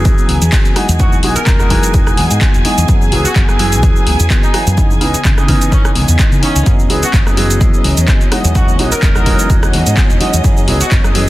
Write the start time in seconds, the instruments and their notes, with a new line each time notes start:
Already playing: clean electric guitar E3 B3 C#4 G#4, violin section G#4 G#5
0.05 fingered electric bass E2, grand piano F#3 B3 E4 G#4, kick, closed hi-hat, cabasa
0.17 clean electric guitar B3 C#4 G#4, cabasa
0.28 fingered electric bass C#2, clean electric guitar E3 B3 C#4 G#4, open hi-hat
0.41 fingered electric bass E2, clean electric guitar B3 C#4 G#4, closed hi-hat, cabasa
0.52 clean electric guitar E3 B3 C#4 G#4, kick, clap, closed hi-hat, cabasa
0.65 closed hi-hat, cabasa
0.75 grand piano E3 G#3 D#4 F#4, clean electric guitar F#3 B3 D#4 G#4, cross-stick, open hi-hat
0.89 fingered electric bass E2, closed hi-hat, cabasa
0.99 grand piano E3 G#3 D#4 F#4, clean electric guitar F#3 B3 D#4 G#4, horn section F#4, kick, closed hi-hat, cabasa
1.13 cabasa
1.22 fingered electric bass B1, grand piano E3 G#3 D#4 F#4, clean electric guitar F#3 B3 D#4 G#4, open hi-hat
1.35 clean electric guitar B3 D#4 G#4, horn section A#4, muted fingered electric bass stroke, closed hi-hat, cabasa
1.46 fingered electric bass E1, clean electric guitar F#3 B3 D#4, kick, clap, closed hi-hat, cabasa
1.58 grand piano E3 G#3 D#4 F#4, clean electric guitar B3 D#4 G#4, cross-stick, cabasa
1.69 grand piano E3 G#3 D#4 F#4, clean electric guitar F#3 B3 D#4 G#4, kick, open hi-hat
1.83 closed hi-hat, cabasa
1.93 fingered electric bass E1, grand piano E3 G#3 D#4 F#4, kick, closed hi-hat, cabasa
2.06 clean electric guitar B3 D#4 G#4, cross-stick, cabasa
2.17 fingered electric bass E2, clean electric guitar F#3 B3 D#4 G#4, open hi-hat
2.30 fingered electric bass G#2, clean electric guitar B3 D#4 G#4, closed hi-hat, cabasa
2.41 clean electric guitar F#3 B3 D#4 G#4, kick, clap, closed hi-hat, cabasa
2.54 fingered electric bass E1, closed hi-hat, cabasa
2.64 grand piano E3 G#3 D#4 F#4, clean electric guitar F#3 B3 D#4 G#4, muted fingered electric bass stroke, open hi-hat
2.78 fingered electric bass E2, closed hi-hat, cabasa
2.88 fingered electric bass F#2, clean electric guitar E3 B3 G#4, grand piano F#3 B3 E4 G#4, kick, closed hi-hat, cabasa
3.02 cabasa
3.11 fingered electric bass C#2, clean electric guitar E3 B3 C#4 G#4, grand piano F#3 B3 E4 G#4, open hi-hat
3.24 clean electric guitar B3 C#4 G#4, horn section F#4, muted fingered electric bass stroke, closed hi-hat, cabasa
3.35 fingered electric bass F#1, clean electric guitar E3 C#4, kick, clap, closed hi-hat, cabasa
3.48 grand piano F#3 B3 E4 G#4, clean electric guitar B3 C#4 G#4, cross-stick, cabasa
3.59 clean electric guitar E3 B3 C#4 G#4, grand piano F#3 B3 E4 G#4, open hi-hat
3.72 closed hi-hat, cabasa
3.82 fingered electric bass E2, grand piano F#3 B3 E4 G#4, kick, closed hi-hat, cabasa
3.95 clean electric guitar B3 C#4 G#4, cabasa
4.06 fingered electric bass C#2, clean electric guitar E3 B3 C#4 G#4, open hi-hat
4.19 fingered electric bass E2, clean electric guitar B3 C#4 G#4, closed hi-hat, cabasa
4.30 clean electric guitar E3 B3 C#4, kick, clap, closed hi-hat, cabasa
4.43 clean electric guitar B3 C#4 G#4, horn section D#4, closed hi-hat, cabasa
4.53 clean electric guitar E3 B3 C#4 G#4, grand piano F#3 B3 E4 G#4, cross-stick, open hi-hat
4.67 fingered electric bass F#2, closed hi-hat, cabasa
4.77 grand piano C#3 E3 B3 D#4, clean electric guitar E3 B3 D#4 G#4, kick, closed hi-hat, cabasa
4.91 cabasa
5.00 fingered electric bass C#2, grand piano C#3 E3 B3 D#4, clean electric guitar E3 B3 D#4 G#4, open hi-hat
5.13 clean electric guitar B3 D#4 G#4, muted fingered electric bass stroke, closed hi-hat, cabasa
5.24 fingered electric bass C#3, clean electric guitar E3 B3 D#4 G#4, kick, clap, closed hi-hat, cabasa
5.37 grand piano C#3 E3 B3 D#4, clean electric guitar B3 D#4 G#4, cross-stick, cabasa
5.48 grand piano C#3 E3 B3 D#4, clean electric guitar E3 B3 D#4 G#4, kick, open hi-hat
5.61 closed hi-hat, cabasa
5.71 grand piano C#3 E3 B3 D#4, fingered electric bass C#3, horn section C#4, kick, closed hi-hat, cabasa
5.84 clean electric guitar B3 D#4 G#4, cross-stick, cabasa
5.95 fingered electric bass C#2, clean electric guitar E3 B3 D#4 G#4, open hi-hat
6.08 fingered electric bass E2, clean electric guitar B3 D#4 G#4, closed hi-hat, cabasa
6.18 clean electric guitar E3 B3 D#4 G#4, kick, clap, closed hi-hat, cabasa
6.32 fingered electric bass C#3, closed hi-hat, cabasa
6.42 grand piano C#3 E3 B3 D#4, clean electric guitar E3 B3 D#4 G#4, horn section C#4, muted fingered electric bass stroke, open hi-hat
6.56 fingered electric bass C#2, closed hi-hat, cabasa
6.65 fingered electric bass F#2, clean electric guitar E3 B3 C#4 G#4, grand piano F#3 B3 E4 G#4, violin section C#4 D#5, kick, closed hi-hat, cabasa
6.80 cabasa
6.89 fingered electric bass C#2, clean electric guitar E3 B3 C#4 G#4, grand piano F#3 B3 E4 G#4, open hi-hat
7.02 clean electric guitar B3 C#4 G#4, horn section F#4, muted fingered electric bass stroke, closed hi-hat, cabasa
7.13 fingered electric bass F#1, clean electric guitar E3 B3, kick, clap, closed hi-hat, cabasa
7.26 grand piano F#3 B3 E4 G#4, clean electric guitar B3 C#4 G#4, cross-stick, cabasa
7.36 clean electric guitar E3 B3 C#4 G#4, grand piano F#3 B3 E4 G#4, open hi-hat
7.50 closed hi-hat, cabasa
7.60 fingered electric bass E2, grand piano F#3 B3 E4, kick, closed hi-hat, cabasa
7.73 clean electric guitar B3 C#4 G#4, cabasa
7.84 fingered electric bass C#2, clean electric guitar E3 B3 C#4 G#4, open hi-hat
7.97 fingered electric bass E2, clean electric guitar B3 C#4 G#4, closed hi-hat, cabasa
8.08 clean electric guitar E3 B3 C#4 G#4, kick, clap, closed hi-hat, cabasa
8.21 clean electric guitar B3 C#4 G#4, closed hi-hat, cabasa
8.31 grand piano E3 G#3 D#4 F#4, clean electric guitar F#3 B3 D#4 G#4, cross-stick, open hi-hat
8.45 fingered electric bass E2, closed hi-hat, cabasa
8.55 grand piano E3 G#3 D#4 F#4, clean electric guitar F#3 B3 D#4 G#4, horn section F#4, kick, closed hi-hat, cabasa
8.68 cabasa
8.78 fingered electric bass B1, grand piano E3 G#3 D#4 F#4, clean electric guitar F#3 B3 D#4 G#4, open hi-hat
8.91 clean electric guitar B3 D#4 G#4, horn section A#4, muted fingered electric bass stroke, closed hi-hat, cabasa
9.02 fingered electric bass E1, clean electric guitar F#3 B3 D#4 G#4, kick, clap, closed hi-hat, cabasa
9.15 grand piano E3 G#3 D#4 F#4, clean electric guitar B3 D#4 G#4, cross-stick, cabasa
9.26 grand piano E3 G#3 D#4 F#4, clean electric guitar F#3 B3 D#4 G#4, kick, open hi-hat
9.39 closed hi-hat, cabasa
9.49 fingered electric bass E1, grand piano E3 G#3, kick, closed hi-hat, cabasa
9.62 clean electric guitar B3 D#4 G#4, cross-stick, cabasa
9.73 fingered electric bass E2, clean electric guitar F#3 B3 D#4 G#4, open hi-hat
9.86 fingered electric bass G#2, clean electric guitar B3 D#4 G#4, closed hi-hat, cabasa
9.97 clean electric guitar F#3 B3 D#4 G#4, kick, clap, closed hi-hat, cabasa
10.10 fingered electric bass E1, clean electric guitar B3 D#4 G#4, closed hi-hat, cabasa
10.20 grand piano E3 G#3 D#4 F#4, clean electric guitar F#3 B3 D#4 G#4, muted fingered electric bass stroke, open hi-hat
10.34 fingered electric bass E2, closed hi-hat, cabasa
10.44 fingered electric bass F#2, clean electric guitar E3 B3 C#4 G#4, grand piano F#3 B3 E4 G#4, kick, closed hi-hat, cabasa
10.57 cabasa
10.67 fingered electric bass C#2, clean electric guitar E3 B3 C#4 G#4, grand piano F#3 B3 E4 G#4, open hi-hat
10.80 clean electric guitar B3 C#4 G#4, horn section F#4, muted fingered electric bass stroke, closed hi-hat, cabasa
10.91 fingered electric bass F#1, clean electric guitar E3 B3, kick, clap, closed hi-hat, cabasa
11.04 grand piano F#3 B3 E4 G#4, clean electric guitar B3 C#4 G#4, cross-stick, cabasa
11.15 clean electric guitar E3 B3 C#4 G#4, grand piano F#3 B3 E4 G#4, open hi-hat